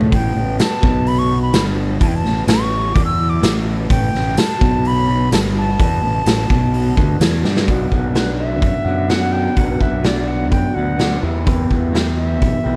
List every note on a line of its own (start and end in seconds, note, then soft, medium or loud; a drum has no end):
0.00 0.10 A2 medium
0.00 0.10 B2 medium
0.00 0.11 A3 loud
0.00 0.11 B3 medium
0.00 floor tom medium
0.12 0.34 A1 medium
0.12 0.34 A2 loud
0.12 7.72 B2 medium
0.12 7.72 B3 medium
0.12 0.57 G5 medium
0.12 kick loud
0.12 open hi-hat medium
0.36 0.57 A1 medium
0.36 0.54 A2 medium
0.59 1.09 A5 medium
0.59 snare loud
0.59 open hi-hat medium
0.59 tambourine medium
0.82 1.50 B1 medium
0.82 1.53 B2 loud
0.82 kick loud
1.07 1.20 B5 loud
1.07 open hi-hat medium
1.19 1.41 C#6 loud
1.42 1.64 B5 medium
1.53 1.97 G1 medium
1.53 2.00 G2 loud
1.53 snare loud
1.53 open hi-hat medium
1.53 tambourine medium
2.00 2.23 E2 loud
2.00 2.23 E3 loud
2.00 2.09 A5 medium
2.00 kick loud
2.00 open hi-hat medium
2.08 2.17 G5 medium
2.16 2.47 A5 medium
2.24 2.46 A1 medium
2.24 2.43 A2 medium
2.24 snare soft
2.47 2.91 A1 medium
2.47 2.94 A2 loud
2.47 2.96 C#6 medium
2.47 snare loud
2.47 open hi-hat medium
2.47 tambourine loud
2.94 3.39 E2 medium
2.94 3.41 E3 loud
2.94 3.04 D6 medium
2.94 kick loud
2.94 open hi-hat medium
3.05 3.31 E6 loud
3.30 3.54 D6 medium
3.42 3.87 A1 medium
3.42 3.88 A2 loud
3.42 snare loud
3.42 open hi-hat soft
3.42 tambourine loud
3.90 4.12 A1 medium
3.90 4.12 A2 loud
3.90 4.40 G5 medium
3.90 kick loud
3.90 open hi-hat medium
4.13 4.35 A1 medium
4.13 4.32 A2 medium
4.13 snare soft
4.37 4.89 A5 loud
4.37 snare loud
4.37 open hi-hat medium
4.37 tambourine medium
4.60 5.28 B1 medium
4.60 5.31 B2 loud
4.60 kick loud
4.85 5.33 B5 loud
4.85 open hi-hat medium
5.32 5.75 G1 medium
5.32 5.78 G2 loud
5.32 5.40 A5 medium
5.32 snare loud
5.32 open hi-hat medium
5.32 tambourine medium
5.58 7.18 A5 medium
5.79 6.01 E2 loud
5.79 6.02 E3 loud
5.79 kick loud
5.79 open hi-hat medium
6.02 6.24 A1 medium
6.02 6.21 A2 medium
6.26 6.48 A1 medium
6.26 6.49 A2 loud
6.26 snare loud
6.26 open hi-hat medium
6.26 tambourine medium
6.50 6.94 B1 medium
6.50 6.96 B2 loud
6.50 kick loud
6.74 open hi-hat medium
6.97 7.19 D2 medium
6.97 7.20 D3 medium
6.97 kick loud
7.20 7.42 E2 medium
7.20 7.43 E3 loud
7.20 snare loud
7.20 open hi-hat medium
7.20 tambourine medium
7.43 7.65 G2 medium
7.43 7.67 G3 loud
7.43 snare medium
7.57 snare medium
7.67 7.89 B1 loud
7.67 9.08 B2 medium
7.67 8.13 F#3 medium
7.67 7.93 B3 medium
7.67 7.91 D4 medium
7.67 7.89 F#4 loud
7.67 kick loud
7.67 open hi-hat soft
7.90 8.62 B1 medium
7.90 8.14 B3 medium
7.90 8.15 D4 medium
7.90 8.16 F#4 medium
7.90 kick medium
8.13 9.09 F#3 medium
8.13 8.87 B3 medium
8.13 8.85 D4 medium
8.13 8.83 F#4 medium
8.13 snare loud
8.13 open hi-hat soft
8.39 9.11 E5 medium
8.62 8.73 F#2 medium
8.62 kick loud
8.62 open hi-hat soft
8.85 9.47 F#2 medium
8.85 9.10 B3 medium
8.85 9.10 D4 medium
8.85 9.11 F#4 medium
9.09 9.54 B2 medium
9.09 9.55 F#3 medium
9.09 9.35 B3 medium
9.09 9.32 D4 medium
9.09 9.31 F#4 loud
9.09 9.34 F#5 loud
9.09 snare loud
9.09 open hi-hat soft
9.32 9.57 B3 medium
9.32 9.57 D4 medium
9.32 9.57 F#4 medium
9.32 9.58 G5 loud
9.55 9.78 B1 loud
9.55 10.04 B2 medium
9.55 10.02 F#3 medium
9.55 9.82 B3 medium
9.55 9.80 D4 loud
9.55 9.78 F#4 medium
9.55 9.82 F#5 medium
9.55 kick loud
9.55 open hi-hat medium
9.79 10.52 B1 medium
9.79 10.04 B3 medium
9.79 10.04 D4 medium
9.79 10.05 F#4 medium
9.79 10.07 E5 medium
9.79 kick medium
10.03 10.97 F#3 medium
10.03 10.76 B3 medium
10.03 10.75 D4 medium
10.03 10.73 F#4 medium
10.03 10.29 D5 medium
10.03 snare loud
10.03 open hi-hat medium
10.28 10.50 F#5 medium
10.51 10.62 F#2 medium
10.51 10.76 G5 medium
10.51 kick loud
10.51 open hi-hat medium
10.74 11.17 D2 medium
10.74 10.98 B3 soft
10.74 10.99 D4 medium
10.74 10.99 F#4 medium
10.74 11.23 F#5 medium
10.98 11.21 B2 medium
10.98 11.21 F#3 medium
10.98 11.22 B3 medium
10.98 11.22 D4 medium
10.98 11.21 F#4 medium
10.98 snare medium
10.98 open hi-hat soft
11.22 11.64 E2 medium
11.22 11.44 E3 medium
11.22 11.44 B3 medium
11.22 11.46 E4 medium
11.22 11.46 G4 medium
11.45 11.92 E3 medium
11.45 11.70 B3 loud
11.45 11.69 E4 medium
11.45 11.67 G4 loud
11.45 kick loud
11.45 open hi-hat soft
11.68 12.42 E2 medium
11.68 11.92 B3 medium
11.68 11.94 E4 medium
11.68 11.94 G4 medium
11.68 kick medium
11.92 12.76 E3 medium
11.92 12.66 B3 medium
11.92 12.64 E4 medium
11.92 12.63 G4 medium
11.92 snare loud
11.92 open hi-hat soft
12.17 12.76 E5 medium
12.42 12.52 B1 medium
12.42 kick loud
12.42 open hi-hat soft
12.64 12.76 B1 medium
12.64 12.76 B3 medium
12.64 12.76 E4 medium
12.64 12.76 G4 medium